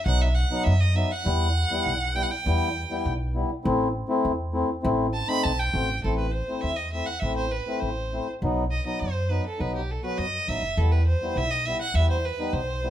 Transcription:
0.06 B1 F#3 B3 D#4 F#5
0.21 E5
0.34 F#5
0.51 F#3 B3 D#4
0.64 F#2 E5
0.80 D#5
0.95 F#3 B3 D#4 E5
1.11 F#5
1.24 E2 G3 B3 E4
1.71 G3 B3 E4
1.86 B1
2.15 G3 B3 E4 G5
2.23 F#5
2.31 G5
2.46 E2 G3 B3 E4
2.90 G3 B3 E4
3.05 B1
3.35 G3 B3 E4
3.64 A1 A3 C4 E4
4.08 A3 C4 E4
4.25 E2
4.53 A3 C4 E4
4.83 A1 A3 C4 E4
5.14 A5
5.28 A3 C4 D#4 B5
5.44 B1 A5
5.59 G5
5.73 A1 A3 C4 F#4
6.04 A1 A3 C4 E4 A4
6.18 B4
6.31 C5
6.48 A3 C4 E4
6.61 E2 E5
6.76 D#5
6.93 A3 C4 E4 E5
7.06 F#5
7.19 A1 A3 C4 E4 E5
7.37 C5
7.52 B4
7.67 A3 C4 E4
7.80 A1 C5
8.13 A3 C4 E4
8.42 B1 F#3 B3 D#4
8.71 D#5
8.85 F#3 B3 D#4 D#5
9.00 F#2 C5
9.30 F#3 B3 D#4 B4
9.47 A4
9.59 B1 F#3 B3 D#4 B4
9.76 G4
9.91 A4
10.03 F#3 B3 F#4 B4
10.18 F#2 D#5
10.47 A1 F#3 B3 D#4 E5
10.62 F#1
10.77 E2 G3 B3 E4 A4
10.92 B4
11.07 C5
11.22 G3 B3 E4
11.36 B1 E5
11.51 D#5
11.65 G3 B3 E4 E5
11.82 F#5
11.94 E2 G3 B3 E4 E5
12.10 C5
12.25 B4
12.39 G3 B3 D#4
12.53 B1 C5
12.83 G3 B3 E4

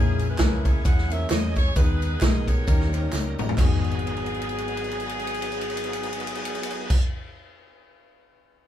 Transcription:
Already playing: A#1 A#2 G#3 A#3 C#4 E4 G4 G#4 A#4 C#5
0.00 C#4
0.19 ride, tambourine
0.30 E4 G#4 B4
0.38 C#2 A#3 C#4 E4 G#4 A#4, kick, snare, clap, ride, tambourine
0.65 C#5, kick, ride, tambourine
0.85 E2 C#5 F#5, kick, ride, tambourine
0.98 snare
1.10 A#3 C4 E4 G#4 A#4 E5, ride, tambourine
1.16 C#4
1.30 E2 D#5, snare, clap, ride, tambourine
1.56 C#5, kick, snare, ride, tambourine
1.75 D#2 D#3 G#3 B3 D#4 G#4 B4, kick, ride, tambourine
2.02 ride, tambourine
2.20 B1 G#3 B3 D#4 G#4 A#4 D#5, kick, snare, clap, ride, tambourine
2.48 G4 A#4 C#5, kick, ride, tambourine
2.66 D#2 D#3 G3 A#3 C#4 D#4 G4 A#4, kick, ride, tambourine
2.80 snare
2.92 A#3 C#4 D#4 G4 C5, ride, tambourine
3.00 C#5
3.13 C#2, snare, clap, tambourine
3.38 A1, mid tom, tambourine
3.49 floor tom
3.55 G#1 F#3 B3 D#4 G#4, kick, clap, crash
3.59 F#4 G#4
3.84 crash
3.91 ride
3.99 crash
4.07 ride
4.17 crash
4.26 ride
4.34 crash
4.42 ride
4.49 crash
4.58 ride
4.68 crash
4.77 ride
4.84 crash
4.91 ride
5.00 crash
5.09 ride
5.19 crash
5.27 ride
5.34 crash
5.42 ride
5.52 crash
5.61 ride
5.70 crash
5.77 ride
5.84 crash
5.93 ride
6.03 crash
6.13 ride
6.20 crash
6.27 ride
6.35 crash
6.45 ride
6.55 crash
6.63 ride
6.70 crash
6.90 kick, crash

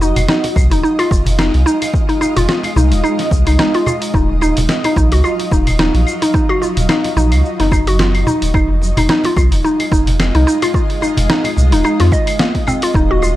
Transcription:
Already playing: F1 G#3 F4 D#5
0.01 D#4, cajon slap, cabasa
0.16 F1, cajon bass, open hi-hat, cabasa, claves
0.29 D#4, snare, cabasa
0.44 cajon slap, open hi-hat
0.56 C2, kick, cajon bass, cajon slap, cabasa, claves
0.71 D#1 D#4, open hi-hat, cabasa
0.83 D#4, cabasa
0.99 F4, cajon slap, open hi-hat, claves
1.11 F1 F4, kick, cabasa
1.26 cajon bass, open hi-hat, cabasa
1.39 D#4, snare, cabasa, claves
1.54 C2, open hi-hat
1.66 D#4, cabasa
1.82 cajon slap, open hi-hat, cabasa, claves
1.94 kick, cabasa
2.09 D#4, open hi-hat
2.21 D#4, cajon slap, cabasa, claves
2.36 F1 F4, cajon bass, open hi-hat, cabasa
2.49 F4, snare, cabasa
2.63 cajon slap, open hi-hat, claves
2.76 C2 D#4, cajon bass, cajon slap, cabasa
2.92 D#1, open hi-hat, cabasa
3.04 D#4, cabasa, claves
3.19 snare, open hi-hat
3.31 C2, kick, cabasa
3.47 C2 D#4, open hi-hat, cabasa, claves
3.59 D#4, snare, cabasa
3.74 F4, open hi-hat
3.86 F4, cajon bass, cabasa, claves
4.02 open hi-hat, cabasa
4.14 D#1 F#3 D#4 F4, kick, cabasa
4.41 D#4, cajon slap, cabasa, claves
4.57 D#1, cajon bass, open hi-hat, cabasa
4.69 snare, cabasa
4.84 D#4, cajon slap, open hi-hat, claves
4.96 A#1 D#4, kick, cajon bass, cajon slap, cabasa
5.11 C#2 F#4, open hi-hat, cabasa
5.24 F4, cabasa, claves
5.39 cajon slap, open hi-hat
5.51 D#1 D#4, kick, cabasa
5.67 cajon bass, open hi-hat, cabasa, claves
5.79 D#4, snare, cabasa
5.94 A#1, open hi-hat
6.07 cabasa, claves
6.22 D#4, cajon slap, open hi-hat, cabasa
6.34 D#4, kick, cabasa
6.49 F#4, claves
6.62 F4, cajon slap, cabasa
6.77 D#1, cajon bass, open hi-hat, cabasa
6.89 D#4, snare, cabasa, claves
7.04 cajon slap, open hi-hat
7.16 A#1 D#4, cajon bass, cajon slap, cabasa
7.32 C#2, open hi-hat, cabasa, claves
7.45 cabasa
7.60 F#1 D#4, snare, open hi-hat
7.72 D#4, kick, cabasa, claves
7.87 F#4, open hi-hat, cabasa
7.99 F4, snare, cabasa
8.15 open hi-hat, claves
8.27 D#4, cajon bass, cabasa
8.42 D#1, open hi-hat, cabasa
8.54 F1 G#3 D#4 F4 D#5, kick, cabasa, claves
8.82 cajon slap, cabasa
8.97 F1 D#4, cajon bass, open hi-hat, cabasa, claves
9.09 D#4, snare, cabasa
9.24 F4, cajon slap, open hi-hat
9.36 C2 F4, cajon bass, kick, cajon slap, cabasa, claves
9.52 D#1, open hi-hat, cabasa
9.64 D#4, cabasa
9.79 cajon slap, open hi-hat, claves
9.92 F1 D#4, kick, cabasa
10.07 cajon bass, open hi-hat, cabasa
10.20 snare, cabasa, claves
10.35 C2 D#4, open hi-hat
10.47 D#4, cabasa
10.62 F4, cajon slap, open hi-hat, cabasa, claves
10.74 F4, kick, cabasa
10.90 open hi-hat
11.01 D#4, cajon slap, cabasa, claves
11.17 F1, cajon bass, open hi-hat, cabasa
11.30 D#4, snare, cabasa
11.44 cajon slap, open hi-hat, claves
11.56 C2, cajon bass, cajon slap, cabasa
11.72 D#1 D#4, open hi-hat, cabasa
11.84 D#4, cabasa, claves
12.00 F2 F4, snare, open hi-hat
12.12 D#5, kick, cabasa
12.27 open hi-hat, cabasa, claves
12.39 A#3, snare, cabasa
12.55 kick, open hi-hat
12.67 C4, cajon bass, cabasa, claves
12.82 F4, open hi-hat, cabasa
12.94 D#1 F#3 D#4 F4, kick, cabasa
13.11 F#4
13.22 F4, cajon slap, cabasa, claves

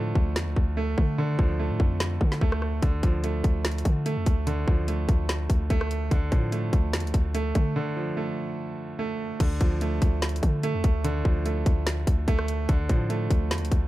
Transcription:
Already playing: A2 D3 F3 A3
0.15 D2, kick
0.36 E2, snare
0.47 D2
0.56 D2, kick
0.77 A3
0.98 D3, kick
1.18 D3
1.39 D2 F3, kick
1.59 A3
1.70 A2
1.80 F2, kick
2.00 snare
2.21 D3, kick
2.32 snare
2.41 D2 A3, kick
2.52 cross-stick
2.62 cross-stick
2.83 D2 D3, kick, closed hi-hat
3.03 D2 F3, kick, closed hi-hat
3.24 A3, closed hi-hat
3.44 D2, kick, closed hi-hat
3.65 snare, closed hi-hat
3.72 closed hi-hat
3.78 closed hi-hat
3.85 D3, kick, closed hi-hat
4.06 A3, closed hi-hat
4.17 F2
4.26 D2, kick, closed hi-hat
4.47 D3, closed hi-hat
4.67 D2 F3, kick
4.88 A3, closed hi-hat
5.09 D2, kick, closed hi-hat
5.29 snare, closed hi-hat
5.50 D2, kick, closed hi-hat
5.70 D2 A3, kick, closed hi-hat
5.81 cross-stick
5.91 closed hi-hat
6.11 D2 D3, kick, closed hi-hat
6.32 A2 F3, kick, closed hi-hat
6.52 A3, closed hi-hat
6.73 D2, kick, closed hi-hat
6.93 E2, snare, closed hi-hat
7.00 closed hi-hat
7.04 D2, closed hi-hat
7.14 D2, kick, closed hi-hat
7.34 A3, closed hi-hat
7.55 D3, kick, closed hi-hat
7.76 D3
7.96 F3
8.17 A3
8.99 A3
9.40 D2 D3, kick, closed hi-hat, crash
9.61 D2 F3, kick, closed hi-hat
9.81 A3, closed hi-hat
10.02 D2, kick, closed hi-hat
10.22 snare, closed hi-hat
10.29 closed hi-hat
10.36 closed hi-hat
10.43 D3, kick, closed hi-hat
10.63 A3, closed hi-hat
10.74 F2
10.84 D2, kick, closed hi-hat
11.04 D3, closed hi-hat
11.25 D2 F3, kick
11.46 A3, closed hi-hat
11.66 D2, kick, closed hi-hat
11.87 snare, closed hi-hat
12.07 D2, kick, closed hi-hat
12.28 D2 A3, kick, closed hi-hat
12.39 cross-stick
12.48 closed hi-hat
12.69 D2 D3, kick, closed hi-hat
12.89 A2 F3, kick, closed hi-hat
13.10 A3, closed hi-hat
13.30 D2, kick, closed hi-hat
13.51 E2, snare, closed hi-hat
13.58 D2, closed hi-hat
13.65 closed hi-hat
13.72 D2, kick, closed hi-hat

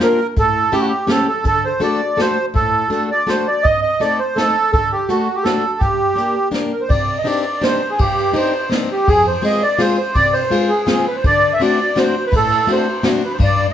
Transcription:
0.00 A#3 D4 F4 G4 A#4, snare, closed hi-hat
0.36 A2 A4, kick, closed hi-hat
0.72 A3 C#4 E4 G4, closed hi-hat
0.80 F#4
0.88 G4
1.07 A3 C#4 E4 G4 A4, snare, closed hi-hat
1.29 A4
1.44 D3 A4, kick, closed hi-hat
1.65 C5
1.80 A3 D4 F#4 A4 D5, closed hi-hat
2.17 A3 D4 F#4 A4 C5, snare, closed hi-hat
2.54 A2 A4, kick, closed hi-hat
2.90 A3 D4 F#4 A4, closed hi-hat
3.11 D5
3.27 A3 D4 F#4 A4 C5, snare, closed hi-hat
3.47 D5
3.63 C3 D#5, kick, closed hi-hat
3.82 D#5
4.00 A3 C4 D#4 A4 D5, closed hi-hat
4.19 C5
4.36 A3 C4 D#4 A4, snare, closed hi-hat
4.73 D3 A4, kick, closed hi-hat
4.92 G4
5.08 A3 D4 F#4 A4, closed hi-hat
5.35 G4
5.44 A3 D4 F#4 A4, snare, closed hi-hat
5.79 G2 G4, kick, closed hi-hat
6.16 A#3 D4 G4 A#4, closed hi-hat
6.51 A#3 D4 G4 A#4, snare, closed hi-hat
6.73 A#4
6.81 C5
6.89 C3 D5, kick, ride
7.18 D#5
7.24 C4 D4 D#4 G4 D5, ride
7.61 C4 D4 D#4 G4 C5, snare, ride
7.90 G#4
7.99 G2 G4, kick, ride
8.18 ride
8.33 C4 D4 D#4 G4 C5, ride
8.70 C4 D4 D#4 G4, snare, ride
8.92 G4
9.07 F2 G#4, kick, ride
9.27 C5
9.42 G#3 C4 F4 G#4 D#5, ride
9.63 D5
9.78 G#3 C4 F4 G#4 C5, snare, ride
9.98 C5
10.14 C3 D5, kick, ride
10.33 C5, ride
10.50 G#3 C4 F4 G#4, ride
10.68 G#4
10.86 G#3 C4 F4 G#4, snare, ride
11.07 B4
11.16 C5
11.24 D3 D5, kick, ride
11.53 E5
11.60 A3 C4 D4 F#4 D5, ride
11.96 A3 C4 D4 F#4 C5, snare, ride
12.27 B4
12.32 A2, kick, ride
12.36 A4
12.50 ride
12.67 A3 C4 D4 F#4, ride
12.72 C5
13.03 A3 C4 D4 F#4, snare, ride
13.25 B4
13.34 C5
13.39 G2, kick, ride
13.43 D5

